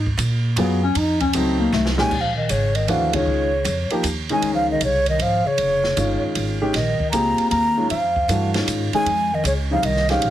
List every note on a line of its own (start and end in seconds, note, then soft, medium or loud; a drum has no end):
0.00 0.17 G#2 medium
0.06 kick medium
0.17 0.56 A#2 loud
0.17 hi-hat pedal medium
0.17 ride medium
0.56 0.94 F#2 loud
0.56 0.81 F#3 medium
0.56 0.81 B3 medium
0.56 0.82 B3 medium
0.56 0.81 F4 medium
0.56 0.81 G#4 medium
0.56 ride medium
0.83 0.98 C#4 loud
0.95 1.33 F2 medium
0.95 1.20 D#4 loud
0.95 ride medium
1.20 1.36 C#4 loud
1.20 kick medium
1.20 ride soft
1.33 1.72 C#2 loud
1.33 1.93 F#3 medium
1.33 1.94 A3 medium
1.33 1.59 C4 loud
1.33 1.94 C4 medium
1.33 1.94 D#4 medium
1.33 hi-hat pedal medium
1.33 ride medium
1.59 1.72 A#3 loud
1.72 2.10 C2 loud
1.72 1.89 A3 medium
1.72 snare medium
1.86 snare medium
1.97 2.10 A#2 medium
1.97 2.10 D#3 medium
1.97 2.21 G#3 medium
1.97 2.10 G#3 medium
1.97 2.10 C#4 medium
1.97 2.10 G4 loud
1.97 2.22 G#5 loud
1.97 snare medium
2.11 2.49 A#1 medium
2.11 kick medium
2.11 crash medium
2.20 2.34 F3 medium
2.20 2.36 F5 medium
2.35 2.51 D#3 medium
2.35 2.52 D#5 medium
2.49 2.87 G#1 medium
2.49 2.76 C#3 medium
2.49 2.77 C#5 medium
2.49 hi-hat pedal medium
2.49 ride medium
2.74 2.90 D#3 medium
2.74 2.90 D#5 medium
2.74 ride soft
2.88 3.25 D#2 medium
2.88 3.11 E3 medium
2.88 3.14 F3 medium
2.88 3.12 A3 medium
2.88 3.11 D4 medium
2.88 3.12 F#4 medium
2.88 3.16 F5 medium
2.88 ride medium
3.12 3.90 C#3 medium
3.12 3.47 D#3 medium
3.12 3.47 G#3 medium
3.12 3.48 C#4 medium
3.12 3.48 F4 medium
3.12 3.92 C#5 medium
3.12 kick medium
3.12 ride medium
3.26 3.64 C#2 medium
3.64 3.89 F2 loud
3.64 hi-hat pedal medium
3.64 ride medium
3.90 4.03 F3 medium
3.90 4.03 A#3 medium
3.90 4.03 D#4 medium
3.90 4.03 G4 medium
3.90 muted upright bass stroke soft
3.90 ride soft
4.03 4.41 D#2 medium
4.03 hi-hat pedal medium
4.03 ride medium
4.29 4.79 D#3 medium
4.29 4.79 G#3 medium
4.29 4.51 G#3 medium
4.29 4.79 C#4 medium
4.29 4.79 D#4 medium
4.29 4.51 G#5 medium
4.29 ride soft
4.42 4.80 C#2 medium
4.42 ride medium
4.53 4.68 F3 medium
4.53 4.69 F5 medium
4.71 4.82 D#3 medium
4.71 4.82 D#5 medium
4.80 5.18 C2 medium
4.80 5.06 C#3 medium
4.80 5.07 C#5 medium
4.80 hi-hat pedal medium
4.80 ride medium
5.06 5.22 D#3 medium
5.06 5.24 D#5 medium
5.06 ride soft
5.19 5.43 G#1 medium
5.19 5.48 F3 medium
5.19 5.48 F5 medium
5.19 ride medium
5.45 6.23 C#3 medium
5.45 6.23 C#5 medium
5.45 muted upright bass stroke soft
5.57 5.96 F1 medium
5.57 ride medium
5.84 snare soft
5.97 6.21 G1 medium
5.97 6.56 D#3 medium
5.97 6.56 G#3 medium
5.97 6.56 C#4 medium
5.97 6.56 F4 medium
5.97 hi-hat pedal medium
5.97 ride medium
6.23 muted upright bass stroke soft
6.35 6.73 G#1 medium
6.35 ride medium
6.61 6.73 D#3 medium
6.61 6.73 G#3 medium
6.61 6.73 C#4 medium
6.61 6.73 G4 medium
6.73 6.97 A#1 medium
6.73 7.11 D#3 medium
6.73 7.10 D#5 medium
6.73 snare soft
6.73 ride medium
6.99 muted upright bass stroke soft
6.99 kick medium
7.11 7.36 C#2 medium
7.11 7.49 A#3 medium
7.11 7.72 C4 medium
7.11 7.72 F4 medium
7.11 7.72 G4 medium
7.11 7.72 G#4 medium
7.11 7.48 A#5 loud
7.11 hi-hat pedal medium
7.11 ride medium
7.38 muted upright bass stroke soft
7.38 ride soft
7.50 7.89 D#2 medium
7.50 7.87 A#3 medium
7.50 7.87 A#5 loud
7.50 ride medium
7.77 7.89 D#3 medium
7.77 7.89 G#3 medium
7.77 7.89 C#4 medium
7.77 7.89 F4 medium
7.88 8.27 F2 medium
7.88 8.49 F3 medium
7.88 8.50 F5 medium
7.88 ride medium
8.16 kick soft
8.28 8.66 G2 medium
8.28 8.52 E3 medium
8.28 8.52 A3 soft
8.28 8.52 D4 medium
8.28 8.52 F#4 medium
8.28 hi-hat pedal medium
8.28 ride medium
8.54 8.88 D#3 medium
8.54 8.88 G#3 soft
8.54 8.88 C#4 soft
8.54 8.88 F4 medium
8.54 snare medium
8.54 ride medium
8.66 8.91 G#2 medium
8.66 hi-hat pedal medium
8.66 ride medium
8.93 9.05 D#3 medium
8.93 9.34 G#3 medium
8.93 9.05 G#3 medium
8.93 9.05 C#4 medium
8.93 9.06 G#4 medium
8.93 9.36 G#5 loud
8.93 muted upright bass stroke soft
8.93 ride soft
9.05 9.43 F2 medium
9.05 ride medium
9.32 9.44 D#3 medium
9.32 9.46 D#5 medium
9.44 9.82 C#2 medium
9.44 9.56 C#3 medium
9.44 9.53 C#5 medium
9.44 hi-hat pedal medium
9.44 ride medium
9.70 9.82 C#3 medium
9.70 9.86 F3 medium
9.70 9.83 G3 medium
9.70 9.83 C4 medium
9.70 9.83 D#4 medium
9.70 9.86 F5 medium
9.83 10.20 C2 medium
9.83 10.09 D#3 medium
9.83 10.10 D#5 medium
9.83 ride medium
9.96 snare soft
10.09 10.30 D#3 medium
10.09 10.30 F3 medium
10.09 10.30 G#3 medium
10.09 10.30 C#4 medium
10.09 10.30 G4 medium
10.09 10.30 F5 medium
10.09 snare soft
10.09 ride soft
10.22 10.30 A#1 medium
10.22 ride medium